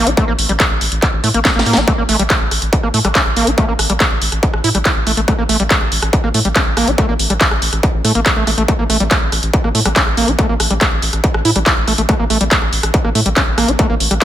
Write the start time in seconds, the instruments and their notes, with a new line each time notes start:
0.07 analog synth bass A1, acid bass E4, closed hi-hat
0.17 acid bass A3, kick, closed hi-hat
0.28 analog synth bass A1, acid bass A#3
0.39 analog synth bass A1, open hi-hat
0.49 analog synth bass A1, acid bass G3, closed hi-hat
0.60 acid bass A3, kick, clap, closed hi-hat
0.71 analog synth bass A1
0.81 analog synth bass A1, open hi-hat
0.92 analog synth bass A1, closed hi-hat
1.02 kick, clap, closed hi-hat
1.13 analog synth bass A1
1.24 analog synth bass A2, acid bass A3, open hi-hat
1.34 analog synth bass A1, acid bass A#3, closed hi-hat
1.45 kick, snare, clap, closed hi-hat
1.56 analog synth bass A1, acid bass A#3, snare
1.66 analog synth bass A2, acid bass A#3, open hi-hat
1.73 analog synth bass A1, acid bass E4, snare, closed hi-hat
1.88 acid bass A3, kick, closed hi-hat
1.98 analog synth bass A1, acid bass A#3
2.09 analog synth bass A1, acid bass A3, cross-stick, open hi-hat
2.19 analog synth bass A1, acid bass G3, closed hi-hat
2.30 kick, cross-stick, clap, closed hi-hat
2.41 analog synth bass A1
2.51 analog synth bass A1, cross-stick, open hi-hat
2.62 analog synth bass A1, closed hi-hat
2.73 kick, closed hi-hat
2.83 analog synth bass A1, acid bass A#3, cross-stick
2.94 analog synth bass A2, acid bass A3, open hi-hat
3.05 analog synth bass A1, acid bass G3, cross-stick, closed hi-hat
3.15 acid bass C#4, kick, clap, closed hi-hat
3.26 analog synth bass A1, cross-stick
3.36 analog synth bass A1, acid bass A#3, open hi-hat
3.47 analog synth bass A1, acid bass E4, closed hi-hat
3.58 acid bass A3, kick, cross-stick, closed hi-hat
3.68 analog synth bass A1, acid bass A#3
3.79 analog synth bass A1, cross-stick, open hi-hat
3.90 analog synth bass A1, acid bass G3, closed hi-hat
4.00 acid bass A3, kick, cross-stick, clap, closed hi-hat
4.11 analog synth bass A1
4.22 analog synth bass A1, open hi-hat
4.32 analog synth bass A1, cross-stick, closed hi-hat
4.43 kick, closed hi-hat
4.53 analog synth bass A1, cross-stick
4.64 analog synth bass A2, acid bass E4, open hi-hat
4.75 analog synth bass A1, acid bass G3, cross-stick, closed hi-hat
4.85 kick, clap, closed hi-hat
4.96 analog synth bass A1
5.07 analog synth bass A1, acid bass A3, cross-stick, open hi-hat
5.17 analog synth bass A1, acid bass A3, closed hi-hat
5.28 acid bass A3, kick, cross-stick, closed hi-hat
5.39 analog synth bass A1, acid bass A#3
5.49 analog synth bass A1, acid bass A3, cross-stick, open hi-hat
5.60 analog synth bass A1, acid bass G3, closed hi-hat
5.71 kick, clap, closed hi-hat
5.81 analog synth bass A1, cross-stick
5.92 analog synth bass A1, open hi-hat
6.02 analog synth bass A1, cross-stick, closed hi-hat
6.13 kick, closed hi-hat
6.24 analog synth bass A1, acid bass A#3, cross-stick
6.34 analog synth bass A2, acid bass A3, open hi-hat
6.45 analog synth bass A1, acid bass G3, closed hi-hat
6.56 acid bass C#4, kick, cross-stick, clap, closed hi-hat
6.66 analog synth bass A1
6.77 analog synth bass A1, acid bass A#3, cross-stick, open hi-hat
6.88 analog synth bass A1, acid bass E4, closed hi-hat
6.98 acid bass A3, kick, cross-stick, closed hi-hat
7.09 analog synth bass A1, acid bass A#3
7.19 analog synth bass A1, open hi-hat
7.30 analog synth bass A1, acid bass G3, cross-stick, closed hi-hat
7.41 acid bass A3, kick, clap, closed hi-hat
7.51 analog synth bass A1, cross-stick
7.62 analog synth bass A1, open hi-hat
7.73 analog synth bass A1, cross-stick, closed hi-hat
7.83 kick, closed hi-hat
7.94 analog synth bass A1
8.05 analog synth bass A2, acid bass A3, cross-stick, open hi-hat
8.15 analog synth bass A1, acid bass A#3, closed hi-hat
8.26 kick, cross-stick, clap, closed hi-hat
8.36 analog synth bass A1, acid bass A3
8.47 analog synth bass A1, acid bass A3, cross-stick, open hi-hat
8.58 analog synth bass A1, acid bass A3, closed hi-hat
8.68 acid bass A3, kick, closed hi-hat
8.79 analog synth bass A1, acid bass A#3
8.90 analog synth bass A1, acid bass A3, cross-stick, open hi-hat
9.00 analog synth bass A1, acid bass G3, closed hi-hat
9.11 kick, cross-stick, clap, closed hi-hat
9.22 analog synth bass A1
9.32 analog synth bass A1, cross-stick, open hi-hat
9.43 analog synth bass A1, closed hi-hat
9.54 kick, closed hi-hat
9.64 analog synth bass A1, acid bass A#3, cross-stick
9.75 analog synth bass A2, acid bass A3, open hi-hat
9.85 analog synth bass A1, acid bass G3, cross-stick, closed hi-hat
9.96 acid bass C#4, kick, clap, closed hi-hat
10.07 analog synth bass A1, cross-stick
10.17 analog synth bass A1, acid bass A#3, open hi-hat
10.28 analog synth bass A1, acid bass E4, closed hi-hat
10.39 acid bass A3, kick, cross-stick, closed hi-hat
10.49 analog synth bass A1, acid bass A#3
10.60 analog synth bass A1, cross-stick, open hi-hat
10.71 analog synth bass A1, acid bass G3, closed hi-hat
10.81 acid bass A3, kick, cross-stick, clap, closed hi-hat
10.92 analog synth bass A1
11.02 analog synth bass A1, open hi-hat
11.13 analog synth bass A1, cross-stick, closed hi-hat
11.24 kick, closed hi-hat
11.34 analog synth bass A1, cross-stick
11.45 analog synth bass A2, acid bass E4, open hi-hat
11.56 analog synth bass A1, acid bass G3, cross-stick, closed hi-hat
11.66 kick, clap, closed hi-hat
11.77 analog synth bass A1
11.88 analog synth bass A1, acid bass A3, cross-stick, open hi-hat
11.98 analog synth bass A1, acid bass A3, closed hi-hat
12.09 acid bass A3, kick, cross-stick, closed hi-hat
12.19 analog synth bass A1, acid bass A#3
12.30 analog synth bass A1, acid bass A3, cross-stick, open hi-hat
12.41 analog synth bass A1, acid bass G3, closed hi-hat
12.51 kick, clap, closed hi-hat
12.62 analog synth bass A1, cross-stick
12.73 analog synth bass A1, open hi-hat
12.83 analog synth bass A1, cross-stick, closed hi-hat
12.94 kick, closed hi-hat
13.05 analog synth bass A1, acid bass A#3, cross-stick
13.15 analog synth bass A2, acid bass A3, open hi-hat
13.26 analog synth bass A1, acid bass G3, closed hi-hat
13.36 acid bass C#4, kick, cross-stick, clap, closed hi-hat
13.47 analog synth bass A1
13.58 analog synth bass A1, acid bass A#3, cross-stick, open hi-hat
13.68 analog synth bass A1, acid bass E4, closed hi-hat
13.79 acid bass A3, kick, cross-stick, closed hi-hat
13.90 analog synth bass A1, acid bass A#3
14.00 analog synth bass A1, open hi-hat
14.11 analog synth bass A1, acid bass G3, cross-stick, closed hi-hat